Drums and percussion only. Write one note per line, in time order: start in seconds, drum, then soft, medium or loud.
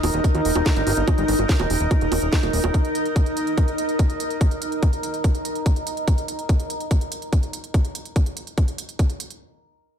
0.03 open hi-hat loud
0.03 high bongo medium
0.14 closed hi-hat soft
0.24 kick loud
0.24 closed hi-hat medium
0.35 closed hi-hat soft
0.35 high bongo soft
0.45 open hi-hat loud
0.55 closed hi-hat soft
0.55 high bongo medium
0.66 kick loud
0.66 snare loud
0.66 closed hi-hat medium
0.76 closed hi-hat soft
0.87 open hi-hat loud
0.87 high bongo soft
0.97 closed hi-hat soft
1.08 kick loud
1.08 closed hi-hat medium
1.08 high bongo medium
1.18 closed hi-hat soft
1.28 open hi-hat loud
1.39 closed hi-hat soft
1.39 high bongo soft
1.49 kick loud
1.49 snare loud
1.49 closed hi-hat medium
1.60 closed hi-hat soft
1.60 high bongo medium
1.70 open hi-hat loud
1.80 closed hi-hat soft
1.91 kick loud
1.91 closed hi-hat medium
1.91 high bongo soft
2.01 closed hi-hat soft
2.12 open hi-hat loud
2.12 high bongo medium
2.22 closed hi-hat soft
2.33 kick loud
2.33 snare loud
2.33 closed hi-hat medium
2.43 closed hi-hat soft
2.43 high bongo soft
2.53 open hi-hat loud
2.64 closed hi-hat soft
2.64 high bongo medium
2.74 kick loud
2.74 closed hi-hat medium
2.85 closed hi-hat soft
2.95 closed hi-hat medium
3.05 closed hi-hat soft
3.16 kick loud
3.16 closed hi-hat medium
3.26 closed hi-hat soft
3.37 closed hi-hat medium
3.47 closed hi-hat soft
3.58 kick loud
3.58 closed hi-hat medium
3.68 closed hi-hat soft
3.78 closed hi-hat medium
3.89 closed hi-hat soft
3.99 kick loud
3.99 closed hi-hat medium
4.10 closed hi-hat soft
4.20 closed hi-hat medium
4.30 closed hi-hat soft
4.41 kick loud
4.41 closed hi-hat medium
4.51 closed hi-hat soft
4.62 closed hi-hat medium
4.72 closed hi-hat soft
4.83 kick loud
4.83 closed hi-hat medium
4.93 closed hi-hat soft
5.03 closed hi-hat medium
5.14 closed hi-hat soft
5.24 kick loud
5.24 closed hi-hat medium
5.35 closed hi-hat soft
5.45 closed hi-hat medium
5.55 closed hi-hat soft
5.66 kick loud
5.66 closed hi-hat medium
5.76 closed hi-hat soft
5.87 closed hi-hat medium
5.97 closed hi-hat soft
6.08 kick loud
6.08 closed hi-hat medium
6.18 closed hi-hat soft
6.28 closed hi-hat medium
6.39 closed hi-hat soft
6.49 kick loud
6.49 closed hi-hat medium
6.60 closed hi-hat soft
6.70 closed hi-hat medium
6.80 closed hi-hat soft
6.91 kick loud
6.91 closed hi-hat medium
7.01 closed hi-hat soft
7.12 closed hi-hat medium
7.22 closed hi-hat soft
7.33 kick loud
7.33 closed hi-hat medium
7.43 closed hi-hat soft
7.53 closed hi-hat medium
7.64 closed hi-hat soft
7.74 kick loud
7.74 closed hi-hat medium
7.85 closed hi-hat soft
7.95 closed hi-hat medium
8.05 closed hi-hat soft
8.16 kick loud
8.16 closed hi-hat medium
8.26 closed hi-hat soft
8.37 closed hi-hat medium
8.47 closed hi-hat soft
8.58 kick loud
8.58 closed hi-hat medium
8.68 closed hi-hat soft
8.78 closed hi-hat loud
8.89 closed hi-hat soft
8.99 kick loud
8.99 closed hi-hat medium
9.10 closed hi-hat soft
9.20 closed hi-hat loud
9.30 closed hi-hat soft